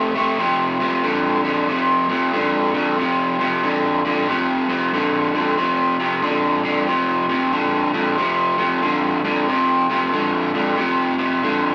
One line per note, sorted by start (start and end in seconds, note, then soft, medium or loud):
0.00 0.11 C3 medium
0.00 0.11 A3 medium
0.15 0.36 C3 medium
0.15 0.37 A3 medium
0.39 0.76 F2 medium
0.39 0.76 C3 medium
0.79 1.01 F2 medium
0.79 1.02 C3 medium
1.04 1.41 F2 medium
1.04 1.41 D3 medium
1.44 1.66 F2 medium
1.44 1.66 D3 medium
1.68 2.06 F2 medium
1.68 2.06 C3 medium
2.09 2.31 F2 medium
2.09 2.31 C3 medium
2.33 2.70 F2 loud
2.33 2.71 D3 medium
2.74 2.96 F2 medium
2.74 2.96 D3 medium
2.98 3.35 F2 medium
2.98 3.36 C3 medium
3.39 3.61 F2 medium
3.39 3.61 C3 medium
3.63 4.00 F2 medium
3.63 4.01 D3 medium
4.05 4.26 F2 medium
4.05 4.26 D3 medium
4.28 4.65 F2 medium
4.28 4.66 C3 medium
4.69 4.91 F2 medium
4.69 4.91 C3 medium
4.93 5.30 F2 medium
4.93 5.31 D3 medium
5.34 5.56 F2 medium
5.34 5.56 D3 medium
5.57 5.95 F2 medium
5.57 5.95 C3 medium
6.00 6.21 F2 medium
6.00 6.21 C3 medium
6.22 6.60 F2 medium
6.22 6.60 D3 medium
6.63 6.85 F2 medium
6.63 6.85 D3 medium
6.87 7.25 F2 medium
6.87 7.25 C3 medium
7.29 7.50 F2 medium
7.29 7.50 C3 medium
7.53 7.90 F2 medium
7.53 7.90 D3 loud
7.94 8.15 F2 medium
7.94 8.16 D3 medium
8.18 8.55 F2 medium
8.18 8.55 C3 loud
8.58 8.80 F2 medium
8.58 8.80 C3 medium
8.82 9.20 F2 medium
8.82 9.20 D3 medium
9.24 9.45 F2 medium
9.24 9.46 D3 medium
9.48 9.85 F2 medium
9.48 9.85 C3 medium
9.89 10.10 F2 medium
9.89 10.11 C3 medium
10.13 10.50 F2 medium
10.13 10.50 D3 medium
10.54 10.75 F2 medium
10.54 10.76 D3 medium
10.77 11.14 F2 medium
10.77 11.15 C3 loud
11.19 11.40 F2 medium
11.19 11.40 C3 medium
11.43 11.75 F2 medium
11.43 11.75 D3 loud